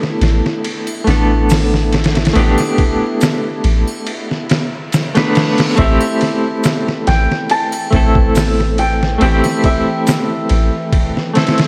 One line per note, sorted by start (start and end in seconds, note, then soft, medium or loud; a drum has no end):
0.00 1.01 A3 medium
0.00 1.02 B3 medium
0.00 1.03 D4 medium
0.00 5.80 E4 medium
0.00 1.03 G4 loud
0.00 snare soft
0.21 0.41 A1 loud
0.21 snare medium
0.21 ride medium
0.46 snare soft
0.65 ride medium
0.87 ride soft
0.87 triangle medium
1.04 2.32 A1 medium
1.04 2.29 A3 medium
1.04 2.30 B3 medium
1.04 2.31 D4 medium
1.04 ride medium
1.09 2.32 A4 medium
1.09 snare soft
1.49 snare loud
1.49 open hi-hat medium
1.49 shaker medium
1.74 snare soft
1.93 snare medium
1.93 ride medium
2.04 snare medium
2.04 ride medium
2.15 snare medium
2.15 ride medium
2.25 snare medium
2.25 ride medium
2.33 2.56 A1 loud
2.33 4.44 A3 medium
2.33 4.45 B3 medium
2.33 4.46 D4 medium
2.33 ride medium
2.39 4.47 G4 loud
2.58 snare soft
2.58 triangle medium
2.78 kick medium
2.78 ride medium
3.21 snare loud
3.21 ride medium
3.21 shaker medium
3.64 3.84 A1 loud
3.64 ride medium
3.88 triangle medium
4.07 ride medium
4.07 reverse cymbal medium
4.31 snare soft
4.50 snare loud
4.50 ride medium
4.92 snare medium
4.92 ride medium
4.92 shaker medium
5.15 5.73 A3 medium
5.15 5.74 B3 medium
5.15 5.74 D4 medium
5.15 5.74 B4 medium
5.15 snare loud
5.15 ride medium
5.35 snare loud
5.35 ride medium
5.58 snare medium
5.58 ride medium
5.76 5.98 A1 loud
5.76 11.68 E3 medium
5.76 7.87 A3 medium
5.76 7.87 C4 medium
5.76 7.88 E4 medium
5.76 8.09 E5 medium
5.76 kick loud
5.76 ride medium
5.82 7.89 G4 loud
6.01 triangle medium
6.21 snare soft
6.21 ride medium
6.64 snare loud
6.64 ride medium
6.64 shaker medium
6.88 snare soft
7.07 7.27 A1 loud
7.07 8.79 G5 medium
7.07 snare medium
7.07 ride medium
7.32 snare medium
7.50 9.44 A5 loud
7.50 ride medium
7.72 ride soft
7.72 triangle medium
7.91 9.17 A1 medium
7.91 9.15 A3 medium
7.91 9.16 C4 medium
7.91 9.17 E4 medium
7.91 kick medium
7.91 ride medium
7.96 9.18 A4 medium
8.15 kick medium
8.35 snare loud
8.35 open hi-hat medium
8.35 shaker medium
8.60 snare soft
8.78 9.22 G5 medium
8.78 ride medium
9.03 snare soft
9.18 9.41 A1 loud
9.18 11.29 A3 medium
9.18 11.30 C4 medium
9.18 11.31 E4 medium
9.18 11.29 G5 medium
9.18 ride medium
9.24 11.32 G4 loud
9.44 snare soft
9.44 triangle medium
9.64 11.68 E5 medium
9.64 kick medium
9.64 ride medium
10.07 snare loud
10.07 ride medium
10.07 shaker medium
10.49 10.70 A1 loud
10.49 ride medium
10.93 kick loud
10.93 ride medium
11.17 snare soft
11.34 11.68 A3 medium
11.34 11.68 C4 medium
11.34 11.68 E4 medium
11.34 snare medium
11.34 ride medium
11.39 11.68 A4 medium
11.47 snare medium
11.47 ride medium
11.58 snare medium
11.58 ride medium